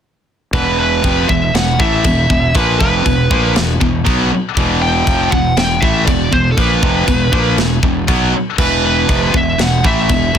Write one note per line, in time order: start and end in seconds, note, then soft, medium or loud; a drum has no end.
0.53 1.00 E1 loud
0.53 1.03 E2 loud
0.53 1.03 B2 loud
0.53 1.03 E3 loud
0.53 0.78 B4 medium
0.53 kick loud
0.53 china medium
0.79 1.26 B4 medium
1.03 1.28 F1 medium
1.03 1.28 F2 medium
1.03 1.28 C3 loud
1.03 1.28 F3 loud
1.03 kick loud
1.03 china medium
1.29 1.53 E1 medium
1.29 1.49 E2 medium
1.29 1.49 B2 medium
1.29 1.52 E5 medium
1.29 kick medium
1.54 1.78 E1 medium
1.54 1.75 E2 medium
1.54 1.75 B2 medium
1.54 1.80 F#5 loud
1.54 snare loud
1.54 china medium
1.79 2.03 A1 medium
1.79 2.04 A2 medium
1.79 2.04 E3 loud
1.79 2.04 A3 loud
1.79 2.57 E5 loud
1.79 kick loud
2.04 2.28 E1 medium
2.04 2.25 E2 medium
2.04 2.25 B2 medium
2.04 kick medium
2.04 china medium
2.30 2.54 E1 medium
2.30 2.50 E2 medium
2.30 2.50 B2 medium
2.30 kick medium
2.54 2.78 A#1 loud
2.54 2.79 A#2 medium
2.54 2.80 F3 loud
2.54 2.80 A#3 loud
2.54 2.78 B4 medium
2.54 kick loud
2.54 china medium
2.80 3.04 F1 loud
2.80 3.05 F2 medium
2.80 3.05 C3 medium
2.80 3.05 F3 loud
2.80 3.51 B4 medium
2.80 kick loud
3.06 3.29 E1 medium
3.06 3.26 E2 medium
3.06 3.26 B2 medium
3.06 kick medium
3.06 china medium
3.31 3.54 A#1 loud
3.31 3.55 A#2 medium
3.31 3.55 F3 medium
3.31 3.56 A#3 loud
3.31 kick loud
3.56 3.79 E1 medium
3.56 3.76 E2 medium
3.56 3.76 B2 medium
3.56 snare loud
3.56 china medium
3.80 4.05 E1 medium
3.80 4.01 E2 medium
3.80 4.01 B2 medium
3.80 kick medium
4.05 4.30 B1 loud
4.05 4.30 B2 loud
4.05 4.30 F#3 loud
4.05 4.30 B3 loud
4.05 kick loud
4.05 china medium
4.32 muted distorted electric guitar stroke medium
4.32 muted fingered electric bass stroke soft
4.57 5.03 E1 medium
4.57 5.06 E2 medium
4.57 5.06 B2 loud
4.57 5.07 E3 loud
4.57 kick loud
4.57 china medium
4.82 5.31 G5 loud
5.07 5.30 F1 loud
5.07 5.31 F2 loud
5.07 5.32 C3 loud
5.07 5.32 F3 loud
5.07 kick loud
5.07 china medium
5.31 5.56 E1 medium
5.31 5.52 E2 medium
5.31 5.52 B2 medium
5.31 5.57 F#5 loud
5.31 kick medium
5.57 5.80 E1 medium
5.57 5.77 E2 medium
5.57 5.77 B2 medium
5.57 5.83 G5 loud
5.57 snare loud
5.57 china medium
5.80 6.06 A1 loud
5.80 6.07 A2 loud
5.80 6.07 E3 medium
5.80 6.07 A3 loud
5.80 6.05 E5 medium
5.80 kick loud
6.06 6.31 E1 medium
6.06 6.27 E2 medium
6.06 6.28 B2 medium
6.06 6.33 D5 medium
6.06 kick loud
6.06 china medium
6.31 6.56 E1 medium
6.31 6.52 E2 medium
6.31 6.52 B2 medium
6.31 6.51 C5 medium
6.31 kick medium
6.51 6.58 A4 medium
6.57 6.81 A#1 medium
6.57 6.82 A#2 medium
6.57 6.82 F3 loud
6.57 6.82 A#3 loud
6.57 7.55 B4 medium
6.57 kick loud
6.57 china medium
6.82 7.06 F1 loud
6.82 7.07 F2 medium
6.82 7.07 C3 loud
6.82 7.07 F3 loud
6.82 kick loud
7.07 7.31 E1 medium
7.07 7.28 E2 medium
7.07 7.28 B2 medium
7.07 kick medium
7.07 china medium
7.32 7.56 A#1 medium
7.32 7.57 A#2 loud
7.32 7.57 F3 medium
7.32 7.57 A#3 loud
7.32 kick loud
7.57 7.81 E1 medium
7.57 7.78 E2 medium
7.57 7.78 B2 medium
7.57 snare loud
7.57 china medium
7.83 8.06 E1 medium
7.83 8.04 E2 medium
7.83 8.04 B2 medium
7.83 kick medium
8.07 8.32 B1 medium
8.07 8.32 B2 medium
8.07 8.33 F#3 loud
8.07 8.33 B3 loud
8.07 kick loud
8.07 china medium
8.32 muted fingered electric bass stroke soft
8.32 muted distorted electric guitar stroke medium
8.58 9.05 E1 medium
8.58 9.07 E2 loud
8.58 9.08 B2 loud
8.58 9.08 E3 loud
8.58 8.85 B4 medium
8.58 kick loud
8.58 crash medium
8.58 china medium
8.86 9.37 B4 medium
9.08 9.33 F1 loud
9.08 9.33 F2 loud
9.08 9.33 C3 medium
9.08 9.33 F3 loud
9.08 kick loud
9.08 china medium
9.33 9.58 E1 medium
9.33 9.54 E2 medium
9.33 9.54 B2 medium
9.33 9.61 E5 loud
9.33 kick loud
9.58 9.83 E1 medium
9.58 9.79 E2 medium
9.58 9.79 B2 medium
9.58 9.84 F#5 loud
9.58 snare loud
9.58 china medium
9.84 10.08 A1 loud
9.84 10.09 A2 loud
9.84 10.09 E3 loud
9.84 10.09 A3 loud
9.84 10.38 E5 loud
9.84 kick loud
10.09 10.33 E1 medium
10.09 10.29 E2 medium
10.09 10.30 B2 medium
10.09 kick loud
10.09 china medium
10.35 10.38 E2 medium
10.35 kick loud